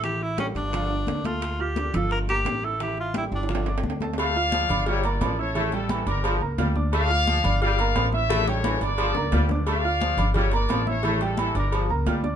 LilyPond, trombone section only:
\new Staff \with { instrumentName = "Trombone section" } { \clef bass \time 4/4 \key g \dorian \tempo 4 = 175 r1 | r1 | r1 | a4 f4 g4 f4 |
a4 e4 f4 g4 | a4 f4 g4 f4 | a4 e4 f4 g4 | a4 f4 g4 f4 |
a4 e4 f4 g4 | }